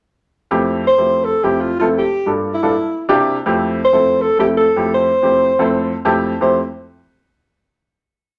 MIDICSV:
0, 0, Header, 1, 3, 480
1, 0, Start_track
1, 0, Key_signature, -1, "major"
1, 0, Tempo, 369914
1, 658, Time_signature, 4, 2, 24, 8
1, 10886, End_track
2, 0, Start_track
2, 0, Title_t, "Alto saxophone"
2, 0, Program_c, 0, 65
2, 1135, Note_on_c, 0, 72, 94
2, 1617, Note_on_c, 0, 69, 88
2, 1637, Note_off_c, 0, 72, 0
2, 1861, Note_on_c, 0, 67, 77
2, 1881, Note_off_c, 0, 69, 0
2, 2091, Note_on_c, 0, 65, 83
2, 2110, Note_off_c, 0, 67, 0
2, 2319, Note_off_c, 0, 65, 0
2, 2327, Note_on_c, 0, 65, 78
2, 2438, Note_off_c, 0, 65, 0
2, 2571, Note_on_c, 0, 67, 85
2, 3022, Note_off_c, 0, 67, 0
2, 3300, Note_on_c, 0, 64, 82
2, 3970, Note_off_c, 0, 64, 0
2, 4994, Note_on_c, 0, 72, 98
2, 5469, Note_on_c, 0, 69, 100
2, 5488, Note_off_c, 0, 72, 0
2, 5700, Note_off_c, 0, 69, 0
2, 5708, Note_on_c, 0, 67, 75
2, 5814, Note_off_c, 0, 67, 0
2, 5935, Note_on_c, 0, 69, 89
2, 6382, Note_off_c, 0, 69, 0
2, 6414, Note_on_c, 0, 72, 94
2, 7801, Note_off_c, 0, 72, 0
2, 8329, Note_on_c, 0, 72, 79
2, 8555, Note_off_c, 0, 72, 0
2, 10886, End_track
3, 0, Start_track
3, 0, Title_t, "Grand piano"
3, 0, Program_c, 1, 0
3, 659, Note_on_c, 1, 57, 74
3, 661, Note_on_c, 1, 64, 72
3, 663, Note_on_c, 1, 41, 85
3, 664, Note_on_c, 1, 60, 70
3, 664, Note_on_c, 1, 67, 94
3, 1080, Note_off_c, 1, 57, 0
3, 1081, Note_off_c, 1, 41, 0
3, 1081, Note_off_c, 1, 64, 0
3, 1082, Note_off_c, 1, 60, 0
3, 1082, Note_off_c, 1, 67, 0
3, 1269, Note_on_c, 1, 41, 60
3, 1271, Note_on_c, 1, 60, 52
3, 1271, Note_on_c, 1, 67, 58
3, 1273, Note_on_c, 1, 57, 56
3, 1275, Note_on_c, 1, 64, 49
3, 1685, Note_off_c, 1, 41, 0
3, 1686, Note_off_c, 1, 60, 0
3, 1686, Note_off_c, 1, 67, 0
3, 1687, Note_off_c, 1, 57, 0
3, 1688, Note_off_c, 1, 64, 0
3, 1864, Note_on_c, 1, 41, 74
3, 1864, Note_on_c, 1, 57, 57
3, 1868, Note_on_c, 1, 60, 66
3, 1871, Note_on_c, 1, 64, 64
3, 1872, Note_on_c, 1, 67, 76
3, 2199, Note_off_c, 1, 41, 0
3, 2199, Note_off_c, 1, 57, 0
3, 2201, Note_off_c, 1, 60, 0
3, 2202, Note_off_c, 1, 64, 0
3, 2203, Note_off_c, 1, 67, 0
3, 2345, Note_on_c, 1, 41, 68
3, 2345, Note_on_c, 1, 57, 62
3, 2345, Note_on_c, 1, 60, 69
3, 2348, Note_on_c, 1, 64, 70
3, 2351, Note_on_c, 1, 69, 80
3, 2583, Note_off_c, 1, 41, 0
3, 2583, Note_off_c, 1, 57, 0
3, 2583, Note_off_c, 1, 60, 0
3, 2584, Note_off_c, 1, 64, 0
3, 2586, Note_off_c, 1, 69, 0
3, 2936, Note_on_c, 1, 43, 64
3, 2940, Note_on_c, 1, 62, 59
3, 2943, Note_on_c, 1, 58, 55
3, 2943, Note_on_c, 1, 65, 54
3, 2947, Note_on_c, 1, 69, 64
3, 3275, Note_off_c, 1, 43, 0
3, 3276, Note_off_c, 1, 62, 0
3, 3278, Note_off_c, 1, 58, 0
3, 3278, Note_off_c, 1, 65, 0
3, 3280, Note_off_c, 1, 69, 0
3, 3407, Note_on_c, 1, 43, 62
3, 3409, Note_on_c, 1, 62, 60
3, 3410, Note_on_c, 1, 58, 68
3, 3410, Note_on_c, 1, 65, 63
3, 3412, Note_on_c, 1, 69, 80
3, 3534, Note_off_c, 1, 43, 0
3, 3535, Note_off_c, 1, 62, 0
3, 3536, Note_off_c, 1, 58, 0
3, 3536, Note_off_c, 1, 65, 0
3, 3537, Note_off_c, 1, 69, 0
3, 4005, Note_on_c, 1, 62, 91
3, 4006, Note_on_c, 1, 58, 82
3, 4009, Note_on_c, 1, 48, 90
3, 4010, Note_on_c, 1, 64, 86
3, 4014, Note_on_c, 1, 67, 108
3, 4349, Note_off_c, 1, 58, 0
3, 4349, Note_off_c, 1, 62, 0
3, 4351, Note_off_c, 1, 48, 0
3, 4351, Note_off_c, 1, 64, 0
3, 4353, Note_off_c, 1, 67, 0
3, 4488, Note_on_c, 1, 57, 83
3, 4489, Note_on_c, 1, 41, 97
3, 4492, Note_on_c, 1, 60, 76
3, 4496, Note_on_c, 1, 67, 92
3, 4499, Note_on_c, 1, 64, 79
3, 4913, Note_off_c, 1, 57, 0
3, 4914, Note_off_c, 1, 41, 0
3, 4915, Note_off_c, 1, 60, 0
3, 4918, Note_off_c, 1, 67, 0
3, 4919, Note_off_c, 1, 64, 0
3, 5096, Note_on_c, 1, 41, 63
3, 5097, Note_on_c, 1, 57, 57
3, 5097, Note_on_c, 1, 60, 62
3, 5100, Note_on_c, 1, 64, 62
3, 5105, Note_on_c, 1, 69, 66
3, 5517, Note_off_c, 1, 41, 0
3, 5518, Note_off_c, 1, 57, 0
3, 5518, Note_off_c, 1, 60, 0
3, 5519, Note_off_c, 1, 64, 0
3, 5521, Note_off_c, 1, 69, 0
3, 5694, Note_on_c, 1, 57, 72
3, 5695, Note_on_c, 1, 41, 70
3, 5699, Note_on_c, 1, 69, 77
3, 5700, Note_on_c, 1, 60, 63
3, 5703, Note_on_c, 1, 64, 69
3, 6032, Note_off_c, 1, 41, 0
3, 6032, Note_off_c, 1, 57, 0
3, 6034, Note_off_c, 1, 69, 0
3, 6035, Note_off_c, 1, 60, 0
3, 6036, Note_off_c, 1, 64, 0
3, 6183, Note_on_c, 1, 41, 74
3, 6184, Note_on_c, 1, 57, 68
3, 6185, Note_on_c, 1, 60, 63
3, 6188, Note_on_c, 1, 64, 66
3, 6189, Note_on_c, 1, 67, 76
3, 6599, Note_off_c, 1, 41, 0
3, 6600, Note_off_c, 1, 57, 0
3, 6600, Note_off_c, 1, 60, 0
3, 6602, Note_off_c, 1, 64, 0
3, 6603, Note_off_c, 1, 67, 0
3, 6780, Note_on_c, 1, 41, 63
3, 6782, Note_on_c, 1, 57, 55
3, 6784, Note_on_c, 1, 60, 58
3, 6785, Note_on_c, 1, 64, 51
3, 6790, Note_on_c, 1, 67, 68
3, 7114, Note_off_c, 1, 41, 0
3, 7114, Note_off_c, 1, 57, 0
3, 7116, Note_off_c, 1, 60, 0
3, 7116, Note_off_c, 1, 64, 0
3, 7118, Note_off_c, 1, 67, 0
3, 7254, Note_on_c, 1, 64, 65
3, 7255, Note_on_c, 1, 60, 80
3, 7256, Note_on_c, 1, 57, 80
3, 7258, Note_on_c, 1, 41, 84
3, 7262, Note_on_c, 1, 69, 78
3, 7674, Note_off_c, 1, 64, 0
3, 7675, Note_off_c, 1, 57, 0
3, 7675, Note_off_c, 1, 60, 0
3, 7676, Note_off_c, 1, 41, 0
3, 7678, Note_off_c, 1, 69, 0
3, 7850, Note_on_c, 1, 41, 83
3, 7852, Note_on_c, 1, 57, 81
3, 7852, Note_on_c, 1, 60, 83
3, 7852, Note_on_c, 1, 81, 69
3, 7853, Note_on_c, 1, 64, 79
3, 7854, Note_on_c, 1, 67, 101
3, 8188, Note_off_c, 1, 41, 0
3, 8189, Note_off_c, 1, 57, 0
3, 8189, Note_off_c, 1, 60, 0
3, 8190, Note_off_c, 1, 64, 0
3, 8190, Note_off_c, 1, 67, 0
3, 8299, Note_off_c, 1, 81, 0
3, 8316, Note_on_c, 1, 41, 74
3, 8316, Note_on_c, 1, 64, 61
3, 8319, Note_on_c, 1, 57, 69
3, 8319, Note_on_c, 1, 60, 64
3, 8321, Note_on_c, 1, 67, 79
3, 8548, Note_off_c, 1, 41, 0
3, 8548, Note_off_c, 1, 64, 0
3, 8549, Note_off_c, 1, 57, 0
3, 8549, Note_off_c, 1, 60, 0
3, 8550, Note_off_c, 1, 67, 0
3, 10886, End_track
0, 0, End_of_file